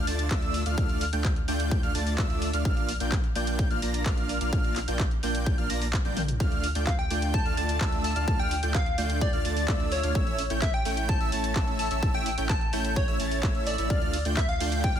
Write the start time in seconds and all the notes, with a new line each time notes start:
0.07 D2 A3 D4 F4 D5 A5 A6, open hi-hat
0.19 closed hi-hat
0.31 D2 A3 D4 F4 D5 E5 E6, kick, clap, closed hi-hat
0.42 closed hi-hat
0.54 open hi-hat
0.66 D2 A3 D4 F4 D5 F5 F6, closed hi-hat
0.78 D2 A3 D4 F6, kick, closed hi-hat
0.89 closed hi-hat
1.01 open hi-hat
1.13 D2 A3 D4 F4 D5 G5 G6, closed hi-hat
1.25 kick, clap, closed hi-hat
1.36 closed hi-hat
1.48 D2 A3 D4 F4 D5 G5 G6, open hi-hat
1.60 closed hi-hat
1.71 kick, closed hi-hat
1.83 D2 A3 D4 F4 D5 F5 F6, closed hi-hat
1.95 D2 A3 D4 F4 D5 A5 A6, open hi-hat
2.07 open hi-hat
2.18 D2 A3 D4 D5 E6, kick, clap, closed hi-hat
2.30 closed hi-hat
2.42 open hi-hat
2.53 D2 A3 D4 F4 D5 F5 F6, closed hi-hat
2.65 A#1 A#3 F6, kick, closed hi-hat
2.77 closed hi-hat
2.89 open hi-hat
3.00 A#1 A#3 D4 F4 D5 G5 G6, closed hi-hat
3.12 kick, clap, closed hi-hat
3.24 closed hi-hat
3.35 A#1 A#3 D4 F4 D5 G5 G6, open hi-hat
3.47 closed hi-hat
3.59 kick, closed hi-hat
3.71 A#1 A#3 D4 F4 D5 F5 F6, closed hi-hat
3.82 A#1 A#3 D4 F4 D5 A#5 A#6, open hi-hat
3.94 closed hi-hat
4.06 A#1 A#3 D4 F4 F5 F6, kick, clap, closed hi-hat
4.18 closed hi-hat
4.29 open hi-hat
4.41 A#1 A#3 D4 F4 D5 F5 F6, closed hi-hat
4.53 A#1 A#3 D4 F4 D5 F5 F6, kick, closed hi-hat
4.64 closed hi-hat
4.76 clap, open hi-hat
4.88 A#1 A#3 D4 F4 D5 G5 G6, closed hi-hat
5.00 kick, clap, closed hi-hat
5.11 closed hi-hat
5.23 A#1 A#3 D4 F4 D5 G5 G6, open hi-hat
5.35 closed hi-hat
5.46 kick, closed hi-hat
5.58 A#1 A#3 D4 F4 D5 F5 F6, closed hi-hat
5.70 A#1 A#3 D4 F4 D5 A#5 A#6, open hi-hat
5.82 open hi-hat
5.93 kick, clap, closed hi-hat
6.05 A#1 A#3 D4 F4 D5 G5 G6, closed hi-hat, high tom
6.17 open hi-hat, mid tom
6.28 closed hi-hat, mid tom
6.40 D2 A3 D4 F4 D5 F5 F6, kick, closed hi-hat
6.52 closed hi-hat
6.64 open hi-hat
6.75 D2 A3 D4 F4 D5 G5 G6, closed hi-hat
6.87 F5, kick, clap, closed hi-hat
6.99 G5, closed hi-hat
7.10 D2 A3 D4 F4 D5 G5 G6, open hi-hat
7.22 closed hi-hat
7.34 A5, kick, closed hi-hat
7.46 D2 A3 D4 F4 D5 F5 F6, closed hi-hat
7.57 D2 A3 D4 F4 D5 A5 A6, open hi-hat
7.69 closed hi-hat
7.81 D2 D4 E6, kick, clap, closed hi-hat
7.92 closed hi-hat
8.04 A5, open hi-hat
8.16 D2 A3 D4 F4 D5 F5 F6, closed hi-hat
8.28 D2 A3 F6, kick, closed hi-hat
8.39 G5, closed hi-hat
8.51 open hi-hat
8.63 D2 A3 D4 F4 D5 G5 G6, closed hi-hat
8.74 F5, kick, clap, closed hi-hat
8.86 closed hi-hat
8.98 D2 A3 D4 F4 D5 G5 G6, open hi-hat
9.10 closed hi-hat
9.21 D5, kick, closed hi-hat
9.33 D2 A3 D4 F4 D5 F5 F6, closed hi-hat
9.45 D2 A3 D4 F4 D5 A5 A6, open hi-hat
9.57 open hi-hat
9.68 D2 E6, kick, clap, closed hi-hat
9.80 closed hi-hat
9.92 C#5, open hi-hat
10.03 D2 A3 D4 F4 D5 F5 F6, closed hi-hat
10.15 A1 E6, kick, closed hi-hat
10.27 closed hi-hat
10.38 open hi-hat
10.50 A1 A3 C#4 E4 C#5 G5 G6, closed hi-hat
10.62 E5, kick, clap, closed hi-hat
10.74 G5, closed hi-hat
10.85 A1 A3 C#4 E4 C#5 G5 G6, open hi-hat
10.97 closed hi-hat
11.09 A5, kick, closed hi-hat
11.21 A1 A3 C#4 E4 C#5 E5 E6, closed hi-hat
11.32 A1 A3 C#4 E4 C#5 A5 A6, open hi-hat
11.44 closed hi-hat
11.56 A1 E4 C#5 E5 E6, kick, clap, closed hi-hat
11.67 closed hi-hat
11.79 A5, open hi-hat
11.91 A1 A3 C#4 E4 C#5 E5 E6, closed hi-hat
12.03 A1 A3 C#4 E4 C#5 E5 E6, kick, closed hi-hat
12.14 G5, closed hi-hat
12.26 open hi-hat
12.38 A1 A3 C#4 E4 C#5 G5 G6, closed hi-hat
12.49 A5, kick, clap, closed hi-hat
12.61 closed hi-hat
12.73 A1 A3 C#4 E4 C#5 G5 G6, open hi-hat
12.85 closed hi-hat
12.96 C#5, kick, closed hi-hat
13.08 A1 A3 C#4 E4 C#5 E5 E6, closed hi-hat
13.20 A1 A3 C#4 E4 C#5 A5 A6, open hi-hat
13.31 open hi-hat
13.43 A1 A3 E4 E5 E6, kick, clap, closed hi-hat
13.55 closed hi-hat
13.67 D5, open hi-hat
13.78 A1 A3 C#4 E4 C#5 E5 E6, closed hi-hat
13.90 D2 D4 F6, kick, closed hi-hat
14.02 closed hi-hat
14.13 open hi-hat, ride
14.25 D2 A3 D4 F4 D5 G5 G6, closed hi-hat
14.37 E5, kick, clap, closed hi-hat
14.49 F5, closed hi-hat
14.60 D2 A3 D4 F4 D5 G5 G6, open hi-hat, ride
14.72 closed hi-hat
14.84 G5, kick, closed hi-hat
14.96 D2 A3 D4 F4 D5 F5 F6, closed hi-hat